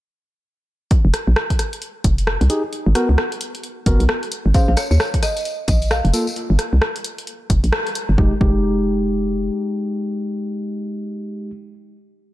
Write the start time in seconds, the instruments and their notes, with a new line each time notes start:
0.91 kick, closed hi-hat
1.05 fm bass F1
1.14 cross-stick, closed hi-hat
1.27 fm bass A#1
1.36 cross-stick
1.50 kick, closed hi-hat
1.59 cross-stick, closed hi-hat
1.73 closed hi-hat
1.82 closed hi-hat
2.04 fm bass F1, kick, closed hi-hat
2.18 closed hi-hat
2.27 cross-stick
2.41 fm bass C2, closed hi-hat
2.50 tine electric piano D#4 G4 G#4, closed hi-hat
2.73 closed hi-hat
2.86 fm bass G#1
2.95 tine electric piano B3 F#4 A#4, cross-stick, closed hi-hat
3.09 fm bass C#2
3.18 cross-stick
3.32 closed hi-hat
3.41 closed hi-hat
3.55 closed hi-hat
3.63 closed hi-hat
3.86 fm bass F#1, tine electric piano B3 F#4 A#4, kick, closed hi-hat
4.00 fm bass B1, closed hi-hat
4.09 cross-stick
4.23 closed hi-hat
4.32 closed hi-hat
4.46 fm bass G#1
4.54 tine electric piano C#4 G#4 C5, marimba F5, kick, closed hi-hat, tambourine
4.68 fm bass A#1, marimba F5
4.77 marimba C#5, cross-stick, closed hi-hat, tambourine
4.91 fm bass D#2, marimba C#5, tambourine
5.00 cross-stick, tambourine
5.14 kick, closed hi-hat
5.23 marimba D#5, cross-stick, closed hi-hat, tambourine
5.37 closed hi-hat, tambourine
5.45 closed hi-hat, tambourine
5.68 fm bass A#1, marimba D#5, kick, closed hi-hat, tambourine
5.82 closed hi-hat, tambourine
5.91 marimba F5, cross-stick, tambourine
6.05 fm bass F1, closed hi-hat
6.14 tine electric piano A#3 F4 A4, closed hi-hat, tambourine
6.27 tambourine
6.36 closed hi-hat
6.50 fm bass G1
6.59 cross-stick, closed hi-hat
6.73 fm bass C2
6.82 cross-stick
6.96 closed hi-hat
7.04 closed hi-hat
7.18 closed hi-hat
7.27 closed hi-hat
7.50 fm bass F1, kick, closed hi-hat
7.64 fm bass A#1, closed hi-hat
7.72 cross-stick
7.87 closed hi-hat
7.95 closed hi-hat
8.09 fm bass G1
8.18 fm bass F1, tine electric piano G#3 D#4 G4, kick
8.41 fm bass F1, tine electric piano G#3 D#4 G4, kick